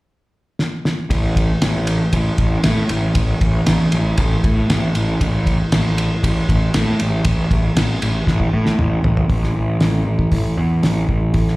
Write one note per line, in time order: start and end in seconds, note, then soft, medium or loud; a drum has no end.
0.59 snare medium
0.85 snare medium
1.10 1.46 A1 medium
1.10 kick loud
1.10 ride medium
1.36 kick medium
1.36 ride medium
1.62 1.98 A1 medium
1.62 snare loud
1.62 ride medium
1.87 ride medium
2.13 2.31 A1 medium
2.13 kick medium
2.13 ride medium
2.38 2.56 A1 loud
2.38 kick medium
2.38 ride medium
2.64 2.83 A2 medium
2.64 snare loud
2.64 ride medium
2.89 3.08 A1 medium
2.89 ride medium
3.15 3.33 A1 loud
3.15 kick loud
3.15 ride medium
3.41 3.59 A1 medium
3.41 kick medium
3.41 ride medium
3.67 3.86 A1 loud
3.67 snare loud
3.67 ride loud
3.92 4.12 A1 loud
3.92 ride medium
4.18 4.36 A1 loud
4.18 kick medium
4.18 ride medium
4.44 4.62 A2 loud
4.44 kick medium
4.44 ride medium
4.70 4.88 A1 medium
4.70 snare loud
4.70 ride medium
4.95 5.14 A1 medium
4.95 ride medium
5.21 5.57 A1 loud
5.21 kick loud
5.21 ride medium
5.46 kick medium
5.46 ride medium
5.72 6.08 A1 medium
5.72 snare loud
5.72 ride loud
5.98 ride medium
6.23 6.41 A1 loud
6.23 kick medium
6.23 ride loud
6.49 6.67 A1 loud
6.49 kick medium
6.49 ride medium
6.74 6.93 A2 medium
6.74 snare loud
6.74 ride loud
7.00 7.19 A1 medium
7.00 ride medium
7.25 7.43 A1 medium
7.25 kick loud
7.25 ride loud
7.51 7.69 A1 medium
7.51 kick medium
7.51 ride medium
7.77 7.95 A1 loud
7.77 snare loud
7.77 ride loud
8.02 8.21 A1 medium
8.02 ride medium
8.27 8.46 A1 medium
8.27 kick medium
8.27 snare medium
8.40 kick medium
8.53 8.71 A2 medium
8.66 snare medium
8.79 8.97 A1 medium
8.79 mid tom medium
9.04 9.23 A1 medium
9.04 floor tom medium
9.17 floor tom medium
9.29 9.51 A1 medium
9.29 kick loud
9.29 open hi-hat soft
9.44 snare soft
9.56 9.77 A1 medium
9.81 10.02 A1 medium
9.81 snare loud
9.81 open hi-hat soft
10.06 10.27 A1 medium
10.19 kick medium
10.32 10.53 A1 medium
10.32 kick medium
10.32 open hi-hat medium
10.57 10.79 E2 medium
10.83 11.04 A1 medium
10.83 snare loud
10.83 open hi-hat medium
11.09 11.30 A1 medium
11.09 kick medium
11.34 11.55 A1 medium
11.34 kick loud
11.34 open hi-hat soft
11.48 snare soft